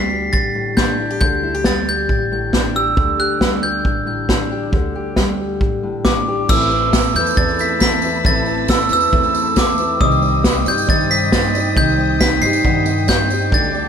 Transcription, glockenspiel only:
0.00 0.35 B6 medium
0.33 0.78 A6 medium
0.77 1.19 G6 medium
1.21 1.66 G6 medium
1.66 1.88 A6 medium
1.89 2.78 G6 medium
2.76 3.21 E6 medium
3.20 3.65 F#6 medium
3.63 6.01 G6 medium
6.05 6.50 D6 medium
6.49 7.11 E6 medium
7.16 7.38 G6 medium
7.37 7.60 A6 medium
7.61 7.80 B6 medium
7.82 8.27 B6 medium
8.26 8.71 A6 medium
8.70 8.90 E6 medium
8.93 9.54 E6 medium
9.59 9.99 D6 medium
10.01 10.68 D#6 medium
10.68 10.90 G6 medium
10.90 11.12 A6 medium
11.11 11.33 B6 medium
11.33 11.78 A6 medium
11.77 12.22 G6 medium
12.21 12.41 B6 medium
12.42 13.10 C7 loud
13.09 13.53 G6 medium
13.54 13.88 A6 medium

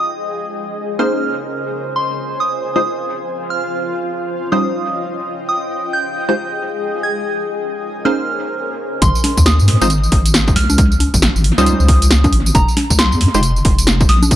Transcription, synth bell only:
0.00 0.13 D#6 medium
0.99 1.89 F6 medium
1.96 2.15 C6 medium
2.40 2.56 D#6 medium
2.76 2.88 D#6 medium
3.50 3.66 F6 medium
4.52 5.42 D#6 medium
5.49 5.68 D#6 medium
5.93 6.09 G6 medium
6.29 6.41 G6 medium
7.03 7.19 G#6 medium
8.05 8.95 F6 medium
9.02 9.21 C6 loud
9.46 9.62 D#6 medium
9.82 9.94 D#6 medium
10.56 10.72 F6 medium
11.58 12.48 D#6 medium
12.55 12.74 A#5 loud
12.99 13.15 C6 loud
13.34 13.47 C6 loud
14.09 14.25 D#6 loud

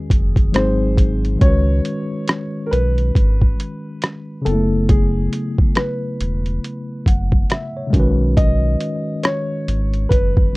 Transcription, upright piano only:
0.00 0.94 G#4 medium
0.54 1.37 C5 medium
1.41 2.70 C#5 loud
2.66 2.72 A#4 medium
2.71 4.51 B4 loud
4.45 4.86 A4 medium
4.89 5.79 G#4 medium
5.76 7.02 B4 medium
8.37 9.20 D#5 loud
9.23 10.13 C#5 medium
10.09 10.57 B4 medium

